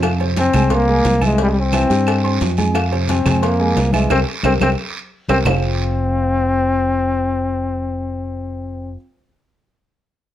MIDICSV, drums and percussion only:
0, 0, Header, 1, 2, 480
1, 0, Start_track
1, 0, Key_signature, -4, "minor"
1, 0, Tempo, 338983
1, 47, Time_signature, 4, 2, 24, 8
1, 14651, End_track
2, 0, Start_track
2, 0, Title_t, "Drums"
2, 36, Note_on_c, 9, 75, 72
2, 40, Note_on_c, 9, 68, 116
2, 42, Note_on_c, 9, 74, 68
2, 44, Note_on_c, 9, 56, 123
2, 44, Note_on_c, 9, 63, 37
2, 177, Note_off_c, 9, 75, 0
2, 181, Note_off_c, 9, 68, 0
2, 184, Note_off_c, 9, 74, 0
2, 186, Note_off_c, 9, 56, 0
2, 186, Note_off_c, 9, 63, 0
2, 285, Note_on_c, 9, 63, 38
2, 286, Note_on_c, 9, 68, 93
2, 426, Note_off_c, 9, 63, 0
2, 428, Note_off_c, 9, 68, 0
2, 516, Note_on_c, 9, 73, 79
2, 519, Note_on_c, 9, 63, 99
2, 527, Note_on_c, 9, 56, 77
2, 534, Note_on_c, 9, 66, 62
2, 534, Note_on_c, 9, 68, 95
2, 658, Note_off_c, 9, 73, 0
2, 661, Note_off_c, 9, 63, 0
2, 669, Note_off_c, 9, 56, 0
2, 676, Note_off_c, 9, 66, 0
2, 676, Note_off_c, 9, 68, 0
2, 757, Note_on_c, 9, 56, 75
2, 761, Note_on_c, 9, 75, 73
2, 762, Note_on_c, 9, 73, 75
2, 765, Note_on_c, 9, 68, 112
2, 767, Note_on_c, 9, 64, 95
2, 899, Note_off_c, 9, 56, 0
2, 902, Note_off_c, 9, 75, 0
2, 904, Note_off_c, 9, 73, 0
2, 907, Note_off_c, 9, 68, 0
2, 909, Note_off_c, 9, 64, 0
2, 994, Note_on_c, 9, 56, 118
2, 1001, Note_on_c, 9, 74, 80
2, 1004, Note_on_c, 9, 68, 79
2, 1005, Note_on_c, 9, 63, 34
2, 1005, Note_on_c, 9, 64, 77
2, 1136, Note_off_c, 9, 56, 0
2, 1143, Note_off_c, 9, 74, 0
2, 1146, Note_off_c, 9, 68, 0
2, 1147, Note_off_c, 9, 63, 0
2, 1147, Note_off_c, 9, 64, 0
2, 1247, Note_on_c, 9, 63, 37
2, 1388, Note_off_c, 9, 63, 0
2, 1480, Note_on_c, 9, 73, 82
2, 1483, Note_on_c, 9, 66, 90
2, 1483, Note_on_c, 9, 68, 76
2, 1486, Note_on_c, 9, 56, 68
2, 1492, Note_on_c, 9, 63, 86
2, 1622, Note_off_c, 9, 73, 0
2, 1625, Note_off_c, 9, 66, 0
2, 1625, Note_off_c, 9, 68, 0
2, 1628, Note_off_c, 9, 56, 0
2, 1634, Note_off_c, 9, 63, 0
2, 1720, Note_on_c, 9, 75, 69
2, 1721, Note_on_c, 9, 68, 110
2, 1727, Note_on_c, 9, 73, 68
2, 1729, Note_on_c, 9, 63, 90
2, 1862, Note_off_c, 9, 75, 0
2, 1863, Note_off_c, 9, 68, 0
2, 1869, Note_off_c, 9, 73, 0
2, 1871, Note_off_c, 9, 63, 0
2, 1957, Note_on_c, 9, 56, 117
2, 1967, Note_on_c, 9, 74, 63
2, 1972, Note_on_c, 9, 63, 37
2, 2099, Note_off_c, 9, 56, 0
2, 2109, Note_off_c, 9, 74, 0
2, 2114, Note_off_c, 9, 63, 0
2, 2209, Note_on_c, 9, 63, 37
2, 2351, Note_off_c, 9, 63, 0
2, 2439, Note_on_c, 9, 73, 83
2, 2446, Note_on_c, 9, 63, 96
2, 2449, Note_on_c, 9, 75, 74
2, 2450, Note_on_c, 9, 56, 72
2, 2450, Note_on_c, 9, 66, 61
2, 2450, Note_on_c, 9, 68, 107
2, 2581, Note_off_c, 9, 73, 0
2, 2587, Note_off_c, 9, 63, 0
2, 2590, Note_off_c, 9, 75, 0
2, 2591, Note_off_c, 9, 56, 0
2, 2592, Note_off_c, 9, 66, 0
2, 2592, Note_off_c, 9, 68, 0
2, 2692, Note_on_c, 9, 63, 43
2, 2694, Note_on_c, 9, 73, 72
2, 2702, Note_on_c, 9, 56, 73
2, 2834, Note_off_c, 9, 63, 0
2, 2835, Note_off_c, 9, 73, 0
2, 2844, Note_off_c, 9, 56, 0
2, 2926, Note_on_c, 9, 74, 81
2, 2927, Note_on_c, 9, 75, 69
2, 2931, Note_on_c, 9, 63, 38
2, 2939, Note_on_c, 9, 68, 105
2, 2942, Note_on_c, 9, 56, 119
2, 3068, Note_off_c, 9, 74, 0
2, 3069, Note_off_c, 9, 75, 0
2, 3073, Note_off_c, 9, 63, 0
2, 3080, Note_off_c, 9, 68, 0
2, 3084, Note_off_c, 9, 56, 0
2, 3180, Note_on_c, 9, 63, 37
2, 3183, Note_on_c, 9, 68, 83
2, 3321, Note_off_c, 9, 63, 0
2, 3324, Note_off_c, 9, 68, 0
2, 3407, Note_on_c, 9, 73, 79
2, 3416, Note_on_c, 9, 56, 66
2, 3422, Note_on_c, 9, 63, 88
2, 3427, Note_on_c, 9, 66, 88
2, 3548, Note_off_c, 9, 73, 0
2, 3558, Note_off_c, 9, 56, 0
2, 3563, Note_off_c, 9, 63, 0
2, 3568, Note_off_c, 9, 66, 0
2, 3641, Note_on_c, 9, 73, 77
2, 3656, Note_on_c, 9, 63, 87
2, 3657, Note_on_c, 9, 68, 88
2, 3782, Note_off_c, 9, 73, 0
2, 3798, Note_off_c, 9, 63, 0
2, 3798, Note_off_c, 9, 68, 0
2, 3887, Note_on_c, 9, 74, 68
2, 3890, Note_on_c, 9, 63, 36
2, 3892, Note_on_c, 9, 68, 107
2, 3893, Note_on_c, 9, 75, 78
2, 3899, Note_on_c, 9, 56, 116
2, 4029, Note_off_c, 9, 74, 0
2, 4032, Note_off_c, 9, 63, 0
2, 4034, Note_off_c, 9, 68, 0
2, 4034, Note_off_c, 9, 75, 0
2, 4041, Note_off_c, 9, 56, 0
2, 4134, Note_on_c, 9, 63, 37
2, 4143, Note_on_c, 9, 68, 91
2, 4275, Note_off_c, 9, 63, 0
2, 4284, Note_off_c, 9, 68, 0
2, 4362, Note_on_c, 9, 73, 77
2, 4374, Note_on_c, 9, 63, 104
2, 4375, Note_on_c, 9, 56, 76
2, 4389, Note_on_c, 9, 66, 62
2, 4389, Note_on_c, 9, 68, 91
2, 4504, Note_off_c, 9, 73, 0
2, 4516, Note_off_c, 9, 56, 0
2, 4516, Note_off_c, 9, 63, 0
2, 4531, Note_off_c, 9, 66, 0
2, 4531, Note_off_c, 9, 68, 0
2, 4611, Note_on_c, 9, 73, 75
2, 4612, Note_on_c, 9, 75, 73
2, 4616, Note_on_c, 9, 68, 101
2, 4617, Note_on_c, 9, 64, 100
2, 4621, Note_on_c, 9, 56, 73
2, 4753, Note_off_c, 9, 73, 0
2, 4753, Note_off_c, 9, 75, 0
2, 4758, Note_off_c, 9, 68, 0
2, 4759, Note_off_c, 9, 64, 0
2, 4762, Note_off_c, 9, 56, 0
2, 4851, Note_on_c, 9, 74, 79
2, 4854, Note_on_c, 9, 63, 39
2, 4854, Note_on_c, 9, 68, 80
2, 4857, Note_on_c, 9, 56, 109
2, 4993, Note_off_c, 9, 74, 0
2, 4995, Note_off_c, 9, 63, 0
2, 4996, Note_off_c, 9, 68, 0
2, 4998, Note_off_c, 9, 56, 0
2, 5094, Note_on_c, 9, 63, 40
2, 5235, Note_off_c, 9, 63, 0
2, 5325, Note_on_c, 9, 63, 88
2, 5333, Note_on_c, 9, 73, 73
2, 5335, Note_on_c, 9, 66, 90
2, 5335, Note_on_c, 9, 68, 74
2, 5338, Note_on_c, 9, 56, 68
2, 5467, Note_off_c, 9, 63, 0
2, 5474, Note_off_c, 9, 73, 0
2, 5476, Note_off_c, 9, 66, 0
2, 5476, Note_off_c, 9, 68, 0
2, 5480, Note_off_c, 9, 56, 0
2, 5560, Note_on_c, 9, 63, 93
2, 5575, Note_on_c, 9, 68, 118
2, 5575, Note_on_c, 9, 73, 69
2, 5576, Note_on_c, 9, 75, 68
2, 5702, Note_off_c, 9, 63, 0
2, 5716, Note_off_c, 9, 68, 0
2, 5717, Note_off_c, 9, 73, 0
2, 5718, Note_off_c, 9, 75, 0
2, 5806, Note_on_c, 9, 63, 98
2, 5809, Note_on_c, 9, 65, 112
2, 5811, Note_on_c, 9, 74, 99
2, 5815, Note_on_c, 9, 75, 103
2, 5820, Note_on_c, 9, 56, 110
2, 5948, Note_off_c, 9, 63, 0
2, 5951, Note_off_c, 9, 65, 0
2, 5953, Note_off_c, 9, 74, 0
2, 5957, Note_off_c, 9, 75, 0
2, 5962, Note_off_c, 9, 56, 0
2, 6277, Note_on_c, 9, 63, 104
2, 6286, Note_on_c, 9, 65, 102
2, 6288, Note_on_c, 9, 75, 98
2, 6297, Note_on_c, 9, 56, 98
2, 6419, Note_off_c, 9, 63, 0
2, 6427, Note_off_c, 9, 65, 0
2, 6429, Note_off_c, 9, 75, 0
2, 6438, Note_off_c, 9, 56, 0
2, 6523, Note_on_c, 9, 63, 116
2, 6525, Note_on_c, 9, 74, 98
2, 6534, Note_on_c, 9, 75, 103
2, 6535, Note_on_c, 9, 56, 104
2, 6537, Note_on_c, 9, 65, 100
2, 6665, Note_off_c, 9, 63, 0
2, 6666, Note_off_c, 9, 74, 0
2, 6676, Note_off_c, 9, 75, 0
2, 6677, Note_off_c, 9, 56, 0
2, 6679, Note_off_c, 9, 65, 0
2, 7483, Note_on_c, 9, 63, 103
2, 7490, Note_on_c, 9, 74, 107
2, 7495, Note_on_c, 9, 56, 94
2, 7496, Note_on_c, 9, 75, 100
2, 7497, Note_on_c, 9, 65, 116
2, 7625, Note_off_c, 9, 63, 0
2, 7631, Note_off_c, 9, 74, 0
2, 7637, Note_off_c, 9, 56, 0
2, 7638, Note_off_c, 9, 75, 0
2, 7639, Note_off_c, 9, 65, 0
2, 7719, Note_on_c, 9, 64, 105
2, 7722, Note_on_c, 9, 74, 87
2, 7730, Note_on_c, 9, 75, 116
2, 7732, Note_on_c, 9, 61, 112
2, 7742, Note_on_c, 9, 66, 110
2, 7861, Note_off_c, 9, 64, 0
2, 7863, Note_off_c, 9, 74, 0
2, 7871, Note_off_c, 9, 75, 0
2, 7873, Note_off_c, 9, 61, 0
2, 7884, Note_off_c, 9, 66, 0
2, 14651, End_track
0, 0, End_of_file